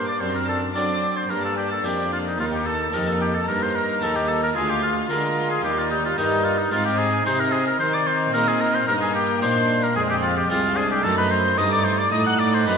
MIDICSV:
0, 0, Header, 1, 7, 480
1, 0, Start_track
1, 0, Tempo, 542005
1, 184, Time_signature, 4, 2, 24, 8
1, 11314, End_track
2, 0, Start_track
2, 0, Title_t, "Violin section"
2, 0, Program_c, 0, 48
2, 63, Note_on_c, 0, 86, 47
2, 181, Note_off_c, 0, 86, 0
2, 182, Note_on_c, 0, 84, 54
2, 299, Note_on_c, 0, 82, 45
2, 301, Note_off_c, 0, 84, 0
2, 418, Note_on_c, 0, 81, 47
2, 423, Note_off_c, 0, 82, 0
2, 663, Note_off_c, 0, 81, 0
2, 667, Note_on_c, 0, 86, 52
2, 1020, Note_off_c, 0, 86, 0
2, 1027, Note_on_c, 0, 84, 42
2, 1145, Note_off_c, 0, 84, 0
2, 1150, Note_on_c, 0, 82, 52
2, 1266, Note_off_c, 0, 82, 0
2, 1267, Note_on_c, 0, 81, 46
2, 1384, Note_on_c, 0, 79, 45
2, 1385, Note_off_c, 0, 81, 0
2, 1506, Note_off_c, 0, 79, 0
2, 1508, Note_on_c, 0, 81, 48
2, 1629, Note_off_c, 0, 81, 0
2, 1632, Note_on_c, 0, 79, 46
2, 1869, Note_on_c, 0, 77, 44
2, 1872, Note_off_c, 0, 79, 0
2, 1988, Note_on_c, 0, 75, 42
2, 1990, Note_off_c, 0, 77, 0
2, 2110, Note_off_c, 0, 75, 0
2, 2110, Note_on_c, 0, 77, 53
2, 2231, Note_off_c, 0, 77, 0
2, 2232, Note_on_c, 0, 79, 45
2, 2280, Note_off_c, 0, 79, 0
2, 2349, Note_on_c, 0, 81, 51
2, 2586, Note_off_c, 0, 81, 0
2, 2593, Note_on_c, 0, 82, 54
2, 2713, Note_off_c, 0, 82, 0
2, 2714, Note_on_c, 0, 81, 42
2, 2762, Note_off_c, 0, 81, 0
2, 2837, Note_on_c, 0, 79, 47
2, 2885, Note_off_c, 0, 79, 0
2, 2958, Note_on_c, 0, 81, 46
2, 3074, Note_off_c, 0, 81, 0
2, 3077, Note_on_c, 0, 82, 57
2, 3194, Note_on_c, 0, 84, 47
2, 3196, Note_off_c, 0, 82, 0
2, 3311, Note_on_c, 0, 82, 51
2, 3312, Note_off_c, 0, 84, 0
2, 3548, Note_off_c, 0, 82, 0
2, 3554, Note_on_c, 0, 81, 51
2, 3672, Note_off_c, 0, 81, 0
2, 3673, Note_on_c, 0, 79, 46
2, 3721, Note_off_c, 0, 79, 0
2, 3788, Note_on_c, 0, 81, 49
2, 3837, Note_off_c, 0, 81, 0
2, 3915, Note_on_c, 0, 82, 47
2, 4028, Note_on_c, 0, 80, 62
2, 4033, Note_off_c, 0, 82, 0
2, 4077, Note_off_c, 0, 80, 0
2, 4151, Note_on_c, 0, 79, 42
2, 4200, Note_off_c, 0, 79, 0
2, 4276, Note_on_c, 0, 77, 51
2, 4509, Note_off_c, 0, 77, 0
2, 4510, Note_on_c, 0, 82, 59
2, 4869, Note_off_c, 0, 82, 0
2, 4869, Note_on_c, 0, 80, 48
2, 4989, Note_on_c, 0, 79, 55
2, 4990, Note_off_c, 0, 80, 0
2, 5110, Note_off_c, 0, 79, 0
2, 5112, Note_on_c, 0, 77, 49
2, 5160, Note_off_c, 0, 77, 0
2, 5229, Note_on_c, 0, 75, 48
2, 5277, Note_off_c, 0, 75, 0
2, 5352, Note_on_c, 0, 77, 51
2, 5468, Note_off_c, 0, 77, 0
2, 5468, Note_on_c, 0, 75, 51
2, 5697, Note_on_c, 0, 77, 49
2, 5707, Note_off_c, 0, 75, 0
2, 5822, Note_off_c, 0, 77, 0
2, 5826, Note_on_c, 0, 75, 46
2, 5940, Note_on_c, 0, 77, 66
2, 5946, Note_off_c, 0, 75, 0
2, 6061, Note_off_c, 0, 77, 0
2, 6062, Note_on_c, 0, 79, 55
2, 6184, Note_off_c, 0, 79, 0
2, 6185, Note_on_c, 0, 80, 59
2, 6426, Note_off_c, 0, 80, 0
2, 6426, Note_on_c, 0, 84, 61
2, 6546, Note_off_c, 0, 84, 0
2, 6547, Note_on_c, 0, 82, 51
2, 6664, Note_off_c, 0, 82, 0
2, 6666, Note_on_c, 0, 80, 55
2, 6781, Note_on_c, 0, 82, 52
2, 6785, Note_off_c, 0, 80, 0
2, 6902, Note_off_c, 0, 82, 0
2, 6902, Note_on_c, 0, 84, 69
2, 7021, Note_off_c, 0, 84, 0
2, 7024, Note_on_c, 0, 86, 52
2, 7072, Note_off_c, 0, 86, 0
2, 7135, Note_on_c, 0, 84, 59
2, 7206, Note_off_c, 0, 84, 0
2, 7383, Note_on_c, 0, 82, 61
2, 7495, Note_on_c, 0, 80, 56
2, 7500, Note_off_c, 0, 82, 0
2, 7616, Note_on_c, 0, 82, 55
2, 7617, Note_off_c, 0, 80, 0
2, 7665, Note_off_c, 0, 82, 0
2, 7730, Note_on_c, 0, 84, 61
2, 7780, Note_off_c, 0, 84, 0
2, 7848, Note_on_c, 0, 82, 71
2, 7971, Note_off_c, 0, 82, 0
2, 7976, Note_on_c, 0, 80, 54
2, 8094, Note_on_c, 0, 79, 61
2, 8095, Note_off_c, 0, 80, 0
2, 8329, Note_on_c, 0, 84, 70
2, 8331, Note_off_c, 0, 79, 0
2, 8692, Note_off_c, 0, 84, 0
2, 8698, Note_on_c, 0, 82, 49
2, 8811, Note_on_c, 0, 80, 65
2, 8814, Note_off_c, 0, 82, 0
2, 8860, Note_off_c, 0, 80, 0
2, 8931, Note_on_c, 0, 79, 58
2, 9051, Note_off_c, 0, 79, 0
2, 9053, Note_on_c, 0, 77, 60
2, 9175, Note_off_c, 0, 77, 0
2, 9177, Note_on_c, 0, 79, 60
2, 9297, Note_off_c, 0, 79, 0
2, 9297, Note_on_c, 0, 77, 62
2, 9537, Note_off_c, 0, 77, 0
2, 9538, Note_on_c, 0, 80, 59
2, 9657, Note_off_c, 0, 80, 0
2, 9665, Note_on_c, 0, 79, 61
2, 9776, Note_on_c, 0, 81, 74
2, 9778, Note_off_c, 0, 79, 0
2, 9893, Note_off_c, 0, 81, 0
2, 9898, Note_on_c, 0, 83, 55
2, 10012, Note_on_c, 0, 84, 66
2, 10014, Note_off_c, 0, 83, 0
2, 10247, Note_on_c, 0, 87, 75
2, 10248, Note_off_c, 0, 84, 0
2, 10370, Note_off_c, 0, 87, 0
2, 10374, Note_on_c, 0, 86, 61
2, 10486, Note_on_c, 0, 84, 61
2, 10492, Note_off_c, 0, 86, 0
2, 10610, Note_off_c, 0, 84, 0
2, 10615, Note_on_c, 0, 86, 55
2, 10728, Note_on_c, 0, 87, 72
2, 10732, Note_off_c, 0, 86, 0
2, 10849, Note_off_c, 0, 87, 0
2, 10852, Note_on_c, 0, 90, 57
2, 10972, Note_off_c, 0, 90, 0
2, 10975, Note_on_c, 0, 86, 63
2, 11094, Note_on_c, 0, 84, 49
2, 11097, Note_off_c, 0, 86, 0
2, 11144, Note_off_c, 0, 84, 0
2, 11210, Note_on_c, 0, 83, 62
2, 11314, Note_off_c, 0, 83, 0
2, 11314, End_track
3, 0, Start_track
3, 0, Title_t, "Oboe"
3, 0, Program_c, 1, 68
3, 74, Note_on_c, 1, 74, 53
3, 184, Note_on_c, 1, 72, 59
3, 197, Note_off_c, 1, 74, 0
3, 305, Note_off_c, 1, 72, 0
3, 314, Note_on_c, 1, 70, 50
3, 428, Note_off_c, 1, 70, 0
3, 432, Note_on_c, 1, 69, 51
3, 539, Note_off_c, 1, 69, 0
3, 664, Note_on_c, 1, 74, 60
3, 1036, Note_on_c, 1, 72, 54
3, 1050, Note_off_c, 1, 74, 0
3, 1154, Note_on_c, 1, 70, 58
3, 1167, Note_off_c, 1, 72, 0
3, 1270, Note_off_c, 1, 70, 0
3, 1280, Note_on_c, 1, 69, 54
3, 1387, Note_off_c, 1, 69, 0
3, 1392, Note_on_c, 1, 67, 52
3, 1508, Note_off_c, 1, 67, 0
3, 1521, Note_on_c, 1, 69, 55
3, 1643, Note_on_c, 1, 67, 52
3, 1656, Note_off_c, 1, 69, 0
3, 1877, Note_off_c, 1, 67, 0
3, 1883, Note_on_c, 1, 65, 56
3, 1934, Note_off_c, 1, 65, 0
3, 2009, Note_on_c, 1, 63, 42
3, 2118, Note_off_c, 1, 63, 0
3, 2124, Note_on_c, 1, 65, 59
3, 2176, Note_off_c, 1, 65, 0
3, 2250, Note_on_c, 1, 67, 54
3, 2364, Note_on_c, 1, 69, 59
3, 2377, Note_off_c, 1, 67, 0
3, 2601, Note_on_c, 1, 70, 62
3, 2615, Note_off_c, 1, 69, 0
3, 2717, Note_off_c, 1, 70, 0
3, 2729, Note_on_c, 1, 69, 51
3, 2839, Note_off_c, 1, 69, 0
3, 2847, Note_on_c, 1, 67, 56
3, 2969, Note_on_c, 1, 69, 56
3, 2982, Note_off_c, 1, 67, 0
3, 3077, Note_off_c, 1, 69, 0
3, 3082, Note_on_c, 1, 70, 62
3, 3214, Note_on_c, 1, 72, 60
3, 3227, Note_off_c, 1, 70, 0
3, 3325, Note_on_c, 1, 70, 60
3, 3339, Note_off_c, 1, 72, 0
3, 3564, Note_on_c, 1, 69, 61
3, 3577, Note_off_c, 1, 70, 0
3, 3687, Note_on_c, 1, 67, 55
3, 3700, Note_off_c, 1, 69, 0
3, 3797, Note_on_c, 1, 69, 59
3, 3810, Note_off_c, 1, 67, 0
3, 3916, Note_off_c, 1, 69, 0
3, 3927, Note_on_c, 1, 70, 61
3, 3979, Note_off_c, 1, 70, 0
3, 4032, Note_on_c, 1, 68, 65
3, 4164, Note_on_c, 1, 67, 57
3, 4178, Note_off_c, 1, 68, 0
3, 4271, Note_off_c, 1, 67, 0
3, 4277, Note_on_c, 1, 65, 59
3, 4384, Note_off_c, 1, 65, 0
3, 4516, Note_on_c, 1, 70, 62
3, 4866, Note_off_c, 1, 70, 0
3, 4876, Note_on_c, 1, 68, 56
3, 4986, Note_off_c, 1, 68, 0
3, 4991, Note_on_c, 1, 67, 63
3, 5117, Note_on_c, 1, 65, 57
3, 5130, Note_off_c, 1, 67, 0
3, 5228, Note_off_c, 1, 65, 0
3, 5233, Note_on_c, 1, 63, 60
3, 5349, Note_off_c, 1, 63, 0
3, 5360, Note_on_c, 1, 65, 58
3, 5467, Note_off_c, 1, 65, 0
3, 5473, Note_on_c, 1, 63, 62
3, 5707, Note_on_c, 1, 65, 61
3, 5721, Note_off_c, 1, 63, 0
3, 5828, Note_on_c, 1, 63, 53
3, 5841, Note_off_c, 1, 65, 0
3, 5945, Note_off_c, 1, 63, 0
3, 5950, Note_on_c, 1, 65, 68
3, 6062, Note_off_c, 1, 65, 0
3, 6067, Note_on_c, 1, 67, 59
3, 6185, Note_on_c, 1, 68, 66
3, 6198, Note_off_c, 1, 67, 0
3, 6426, Note_off_c, 1, 68, 0
3, 6430, Note_on_c, 1, 72, 75
3, 6553, Note_on_c, 1, 70, 64
3, 6566, Note_off_c, 1, 72, 0
3, 6661, Note_on_c, 1, 68, 64
3, 6674, Note_off_c, 1, 70, 0
3, 6783, Note_off_c, 1, 68, 0
3, 6794, Note_on_c, 1, 70, 63
3, 6898, Note_off_c, 1, 70, 0
3, 6903, Note_on_c, 1, 72, 76
3, 7033, Note_on_c, 1, 74, 70
3, 7046, Note_off_c, 1, 72, 0
3, 7148, Note_on_c, 1, 72, 70
3, 7161, Note_off_c, 1, 74, 0
3, 7377, Note_off_c, 1, 72, 0
3, 7383, Note_on_c, 1, 70, 74
3, 7510, Note_on_c, 1, 68, 65
3, 7523, Note_off_c, 1, 70, 0
3, 7624, Note_on_c, 1, 70, 73
3, 7637, Note_off_c, 1, 68, 0
3, 7748, Note_on_c, 1, 72, 69
3, 7762, Note_off_c, 1, 70, 0
3, 7855, Note_off_c, 1, 72, 0
3, 7860, Note_on_c, 1, 70, 78
3, 7914, Note_off_c, 1, 70, 0
3, 7983, Note_on_c, 1, 68, 61
3, 8094, Note_off_c, 1, 68, 0
3, 8099, Note_on_c, 1, 67, 69
3, 8334, Note_off_c, 1, 67, 0
3, 8341, Note_on_c, 1, 72, 79
3, 8708, Note_on_c, 1, 70, 65
3, 8722, Note_off_c, 1, 72, 0
3, 8817, Note_off_c, 1, 70, 0
3, 8822, Note_on_c, 1, 68, 78
3, 8875, Note_off_c, 1, 68, 0
3, 8945, Note_on_c, 1, 67, 65
3, 8997, Note_off_c, 1, 67, 0
3, 9057, Note_on_c, 1, 65, 69
3, 9174, Note_off_c, 1, 65, 0
3, 9185, Note_on_c, 1, 67, 67
3, 9290, Note_off_c, 1, 67, 0
3, 9296, Note_on_c, 1, 65, 69
3, 9531, Note_on_c, 1, 68, 74
3, 9544, Note_off_c, 1, 65, 0
3, 9654, Note_off_c, 1, 68, 0
3, 9661, Note_on_c, 1, 67, 71
3, 9779, Note_on_c, 1, 69, 79
3, 9792, Note_off_c, 1, 67, 0
3, 9893, Note_off_c, 1, 69, 0
3, 9899, Note_on_c, 1, 71, 71
3, 10014, Note_on_c, 1, 72, 77
3, 10028, Note_off_c, 1, 71, 0
3, 10253, Note_on_c, 1, 75, 80
3, 10267, Note_off_c, 1, 72, 0
3, 10373, Note_off_c, 1, 75, 0
3, 10378, Note_on_c, 1, 74, 70
3, 10489, Note_on_c, 1, 72, 67
3, 10503, Note_off_c, 1, 74, 0
3, 10615, Note_on_c, 1, 74, 70
3, 10629, Note_off_c, 1, 72, 0
3, 10726, Note_off_c, 1, 74, 0
3, 10731, Note_on_c, 1, 75, 75
3, 10851, Note_off_c, 1, 75, 0
3, 10863, Note_on_c, 1, 78, 74
3, 10972, Note_on_c, 1, 74, 78
3, 10985, Note_off_c, 1, 78, 0
3, 11109, Note_on_c, 1, 72, 66
3, 11123, Note_off_c, 1, 74, 0
3, 11216, Note_off_c, 1, 72, 0
3, 11221, Note_on_c, 1, 71, 67
3, 11314, Note_off_c, 1, 71, 0
3, 11314, End_track
4, 0, Start_track
4, 0, Title_t, "Violin section"
4, 0, Program_c, 2, 48
4, 0, Note_on_c, 2, 62, 40
4, 164, Note_off_c, 2, 62, 0
4, 180, Note_on_c, 2, 62, 42
4, 651, Note_off_c, 2, 62, 0
4, 661, Note_on_c, 2, 62, 40
4, 1134, Note_off_c, 2, 62, 0
4, 1144, Note_on_c, 2, 62, 44
4, 1612, Note_off_c, 2, 62, 0
4, 1622, Note_on_c, 2, 62, 42
4, 2098, Note_off_c, 2, 62, 0
4, 2106, Note_on_c, 2, 63, 45
4, 2580, Note_off_c, 2, 63, 0
4, 2591, Note_on_c, 2, 63, 41
4, 3060, Note_off_c, 2, 63, 0
4, 3071, Note_on_c, 2, 63, 46
4, 4014, Note_off_c, 2, 63, 0
4, 4029, Note_on_c, 2, 65, 50
4, 4492, Note_off_c, 2, 65, 0
4, 4503, Note_on_c, 2, 65, 46
4, 4976, Note_off_c, 2, 65, 0
4, 4989, Note_on_c, 2, 63, 47
4, 5454, Note_off_c, 2, 63, 0
4, 5464, Note_on_c, 2, 63, 46
4, 5934, Note_off_c, 2, 63, 0
4, 5944, Note_on_c, 2, 63, 50
4, 6416, Note_off_c, 2, 63, 0
4, 6427, Note_on_c, 2, 63, 49
4, 6896, Note_off_c, 2, 63, 0
4, 6906, Note_on_c, 2, 63, 56
4, 7841, Note_off_c, 2, 63, 0
4, 7858, Note_on_c, 2, 63, 58
4, 8327, Note_off_c, 2, 63, 0
4, 8334, Note_on_c, 2, 62, 52
4, 8805, Note_off_c, 2, 62, 0
4, 8810, Note_on_c, 2, 60, 59
4, 9284, Note_off_c, 2, 60, 0
4, 9298, Note_on_c, 2, 60, 55
4, 9533, Note_off_c, 2, 60, 0
4, 9533, Note_on_c, 2, 62, 53
4, 9771, Note_on_c, 2, 63, 58
4, 9774, Note_off_c, 2, 62, 0
4, 10239, Note_off_c, 2, 63, 0
4, 10250, Note_on_c, 2, 63, 51
4, 10717, Note_off_c, 2, 63, 0
4, 10727, Note_on_c, 2, 63, 57
4, 11314, Note_off_c, 2, 63, 0
4, 11314, End_track
5, 0, Start_track
5, 0, Title_t, "Harpsichord"
5, 0, Program_c, 3, 6
5, 0, Note_on_c, 3, 43, 34
5, 149, Note_off_c, 3, 43, 0
5, 189, Note_on_c, 3, 42, 35
5, 634, Note_off_c, 3, 42, 0
5, 669, Note_on_c, 3, 60, 28
5, 670, Note_on_c, 3, 54, 34
5, 671, Note_on_c, 3, 62, 28
5, 675, Note_on_c, 3, 69, 28
5, 1014, Note_off_c, 3, 60, 0
5, 1015, Note_off_c, 3, 62, 0
5, 1018, Note_off_c, 3, 69, 0
5, 1113, Note_off_c, 3, 54, 0
5, 1148, Note_on_c, 3, 43, 36
5, 1593, Note_off_c, 3, 43, 0
5, 1629, Note_on_c, 3, 41, 37
5, 1630, Note_on_c, 3, 58, 29
5, 1631, Note_on_c, 3, 62, 30
5, 1634, Note_on_c, 3, 67, 32
5, 1977, Note_off_c, 3, 58, 0
5, 1978, Note_off_c, 3, 62, 0
5, 1980, Note_off_c, 3, 67, 0
5, 2076, Note_off_c, 3, 41, 0
5, 2114, Note_on_c, 3, 39, 36
5, 2558, Note_off_c, 3, 39, 0
5, 2591, Note_on_c, 3, 41, 37
5, 2592, Note_on_c, 3, 58, 30
5, 2595, Note_on_c, 3, 63, 29
5, 2597, Note_on_c, 3, 67, 31
5, 2939, Note_off_c, 3, 58, 0
5, 2941, Note_off_c, 3, 63, 0
5, 2943, Note_off_c, 3, 67, 0
5, 3039, Note_off_c, 3, 41, 0
5, 3082, Note_on_c, 3, 43, 36
5, 3523, Note_off_c, 3, 43, 0
5, 3557, Note_on_c, 3, 39, 39
5, 3557, Note_on_c, 3, 58, 31
5, 3559, Note_on_c, 3, 63, 29
5, 3564, Note_on_c, 3, 67, 36
5, 3902, Note_off_c, 3, 58, 0
5, 3903, Note_off_c, 3, 63, 0
5, 3906, Note_off_c, 3, 67, 0
5, 4001, Note_off_c, 3, 39, 0
5, 4036, Note_on_c, 3, 38, 37
5, 4479, Note_off_c, 3, 38, 0
5, 4514, Note_on_c, 3, 58, 32
5, 4515, Note_on_c, 3, 50, 41
5, 4517, Note_on_c, 3, 65, 34
5, 4521, Note_on_c, 3, 68, 33
5, 4858, Note_off_c, 3, 58, 0
5, 4860, Note_off_c, 3, 65, 0
5, 4862, Note_off_c, 3, 68, 0
5, 4956, Note_off_c, 3, 50, 0
5, 4992, Note_on_c, 3, 39, 38
5, 5434, Note_off_c, 3, 39, 0
5, 5471, Note_on_c, 3, 43, 40
5, 5472, Note_on_c, 3, 58, 35
5, 5475, Note_on_c, 3, 63, 35
5, 5477, Note_on_c, 3, 67, 36
5, 5814, Note_off_c, 3, 58, 0
5, 5817, Note_off_c, 3, 63, 0
5, 5818, Note_off_c, 3, 67, 0
5, 5912, Note_off_c, 3, 43, 0
5, 5946, Note_on_c, 3, 44, 43
5, 5948, Note_on_c, 3, 56, 48
5, 6391, Note_off_c, 3, 44, 0
5, 6413, Note_off_c, 3, 56, 0
5, 6431, Note_on_c, 3, 48, 41
5, 6433, Note_on_c, 3, 60, 33
5, 6433, Note_on_c, 3, 63, 34
5, 6437, Note_on_c, 3, 68, 36
5, 6775, Note_off_c, 3, 60, 0
5, 6775, Note_off_c, 3, 63, 0
5, 6778, Note_off_c, 3, 68, 0
5, 6872, Note_off_c, 3, 48, 0
5, 6913, Note_on_c, 3, 51, 42
5, 7352, Note_off_c, 3, 51, 0
5, 7388, Note_on_c, 3, 46, 47
5, 7391, Note_on_c, 3, 60, 36
5, 7394, Note_on_c, 3, 63, 37
5, 7395, Note_on_c, 3, 68, 39
5, 7731, Note_off_c, 3, 60, 0
5, 7733, Note_off_c, 3, 63, 0
5, 7734, Note_off_c, 3, 68, 0
5, 7827, Note_off_c, 3, 46, 0
5, 7866, Note_on_c, 3, 43, 45
5, 8306, Note_off_c, 3, 43, 0
5, 8339, Note_on_c, 3, 46, 44
5, 8341, Note_on_c, 3, 58, 35
5, 8344, Note_on_c, 3, 63, 39
5, 8346, Note_on_c, 3, 70, 40
5, 8684, Note_off_c, 3, 58, 0
5, 8687, Note_off_c, 3, 63, 0
5, 8687, Note_off_c, 3, 70, 0
5, 8782, Note_off_c, 3, 46, 0
5, 8819, Note_on_c, 3, 41, 45
5, 9263, Note_off_c, 3, 41, 0
5, 9298, Note_on_c, 3, 36, 48
5, 9300, Note_on_c, 3, 60, 39
5, 9302, Note_on_c, 3, 65, 40
5, 9307, Note_on_c, 3, 68, 40
5, 9644, Note_off_c, 3, 60, 0
5, 9645, Note_off_c, 3, 65, 0
5, 9648, Note_off_c, 3, 68, 0
5, 9741, Note_off_c, 3, 36, 0
5, 9778, Note_on_c, 3, 42, 46
5, 10219, Note_off_c, 3, 42, 0
5, 10253, Note_on_c, 3, 43, 44
5, 10255, Note_on_c, 3, 60, 37
5, 10256, Note_on_c, 3, 63, 37
5, 10261, Note_on_c, 3, 69, 42
5, 10600, Note_off_c, 3, 60, 0
5, 10601, Note_off_c, 3, 63, 0
5, 10605, Note_off_c, 3, 69, 0
5, 10699, Note_off_c, 3, 43, 0
5, 10730, Note_on_c, 3, 45, 44
5, 11182, Note_off_c, 3, 45, 0
5, 11220, Note_on_c, 3, 60, 37
5, 11223, Note_on_c, 3, 42, 44
5, 11226, Note_on_c, 3, 63, 39
5, 11228, Note_on_c, 3, 69, 38
5, 11314, Note_off_c, 3, 42, 0
5, 11314, Note_off_c, 3, 60, 0
5, 11314, Note_off_c, 3, 63, 0
5, 11314, Note_off_c, 3, 69, 0
5, 11314, End_track
6, 0, Start_track
6, 0, Title_t, "Viola section"
6, 0, Program_c, 4, 48
6, 0, Note_on_c, 4, 58, 42
6, 162, Note_off_c, 4, 58, 0
6, 179, Note_on_c, 4, 60, 40
6, 653, Note_off_c, 4, 60, 0
6, 664, Note_on_c, 4, 60, 41
6, 1136, Note_off_c, 4, 60, 0
6, 1144, Note_on_c, 4, 58, 40
6, 1617, Note_off_c, 4, 58, 0
6, 1633, Note_on_c, 4, 58, 41
6, 2104, Note_off_c, 4, 58, 0
6, 2114, Note_on_c, 4, 58, 41
6, 2580, Note_off_c, 4, 58, 0
6, 2591, Note_on_c, 4, 58, 43
6, 3064, Note_off_c, 4, 58, 0
6, 3074, Note_on_c, 4, 58, 47
6, 4016, Note_off_c, 4, 58, 0
6, 4034, Note_on_c, 4, 56, 48
6, 4503, Note_off_c, 4, 56, 0
6, 4512, Note_on_c, 4, 56, 47
6, 4981, Note_off_c, 4, 56, 0
6, 4991, Note_on_c, 4, 55, 48
6, 5457, Note_off_c, 4, 55, 0
6, 5468, Note_on_c, 4, 55, 48
6, 5936, Note_off_c, 4, 55, 0
6, 5945, Note_on_c, 4, 60, 45
6, 6416, Note_off_c, 4, 60, 0
6, 6426, Note_on_c, 4, 60, 51
6, 6895, Note_off_c, 4, 60, 0
6, 6907, Note_on_c, 4, 60, 53
6, 7842, Note_off_c, 4, 60, 0
6, 7860, Note_on_c, 4, 58, 57
6, 8814, Note_on_c, 4, 56, 55
6, 8816, Note_off_c, 4, 58, 0
6, 9286, Note_off_c, 4, 56, 0
6, 9296, Note_on_c, 4, 56, 53
6, 9766, Note_off_c, 4, 56, 0
6, 9777, Note_on_c, 4, 57, 53
6, 10240, Note_off_c, 4, 57, 0
6, 10251, Note_on_c, 4, 57, 56
6, 10719, Note_off_c, 4, 57, 0
6, 10729, Note_on_c, 4, 57, 54
6, 11314, Note_off_c, 4, 57, 0
6, 11314, End_track
7, 0, Start_track
7, 0, Title_t, "Cello section"
7, 0, Program_c, 5, 48
7, 0, Note_on_c, 5, 43, 44
7, 184, Note_off_c, 5, 43, 0
7, 186, Note_on_c, 5, 42, 45
7, 658, Note_off_c, 5, 42, 0
7, 667, Note_on_c, 5, 54, 44
7, 1137, Note_off_c, 5, 54, 0
7, 1149, Note_on_c, 5, 43, 47
7, 1620, Note_off_c, 5, 43, 0
7, 1630, Note_on_c, 5, 41, 46
7, 2102, Note_off_c, 5, 41, 0
7, 2113, Note_on_c, 5, 39, 49
7, 2590, Note_on_c, 5, 41, 47
7, 2593, Note_off_c, 5, 39, 0
7, 3064, Note_off_c, 5, 41, 0
7, 3073, Note_on_c, 5, 43, 49
7, 3544, Note_off_c, 5, 43, 0
7, 3558, Note_on_c, 5, 39, 46
7, 4032, Note_on_c, 5, 38, 48
7, 4036, Note_off_c, 5, 39, 0
7, 4502, Note_off_c, 5, 38, 0
7, 4516, Note_on_c, 5, 50, 50
7, 4983, Note_off_c, 5, 50, 0
7, 4991, Note_on_c, 5, 39, 52
7, 5460, Note_off_c, 5, 39, 0
7, 5466, Note_on_c, 5, 43, 55
7, 5935, Note_off_c, 5, 43, 0
7, 5944, Note_on_c, 5, 44, 51
7, 6415, Note_off_c, 5, 44, 0
7, 6425, Note_on_c, 5, 48, 53
7, 6895, Note_off_c, 5, 48, 0
7, 6906, Note_on_c, 5, 51, 55
7, 7374, Note_off_c, 5, 51, 0
7, 7383, Note_on_c, 5, 46, 57
7, 7850, Note_off_c, 5, 46, 0
7, 7864, Note_on_c, 5, 43, 59
7, 8331, Note_off_c, 5, 43, 0
7, 8343, Note_on_c, 5, 46, 59
7, 8816, Note_on_c, 5, 41, 58
7, 8819, Note_off_c, 5, 46, 0
7, 9297, Note_off_c, 5, 41, 0
7, 9298, Note_on_c, 5, 36, 59
7, 9767, Note_off_c, 5, 36, 0
7, 9773, Note_on_c, 5, 42, 61
7, 10251, Note_on_c, 5, 43, 58
7, 10252, Note_off_c, 5, 42, 0
7, 10723, Note_off_c, 5, 43, 0
7, 10734, Note_on_c, 5, 45, 59
7, 11210, Note_off_c, 5, 45, 0
7, 11214, Note_on_c, 5, 42, 55
7, 11314, Note_off_c, 5, 42, 0
7, 11314, End_track
0, 0, End_of_file